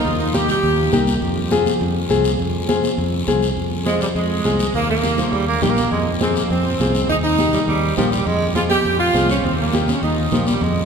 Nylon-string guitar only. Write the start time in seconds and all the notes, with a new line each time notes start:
0.34 A#3 D#4 G4
0.92 A#3 D#4 G4
1.51 C4 F4 G#4
2.09 C4 F4 G#4
2.69 C4 F4 G#4
3.28 C4 F4 G#4
3.86 C4 F4 G#4
4.45 C4 F4 G#4
5.04 A#3 D#4 G4
5.62 A#3 D#4 G4
6.21 C4 F4 G#4
6.80 C4 F4 G#4
7.39 A#3 D#4 G4
7.97 A#3 D#4 G4
8.55 C4 F4 G#4
9.14 C4 F4 G#4
9.74 A#3 D#4 G4
10.32 A#3 D#4 G4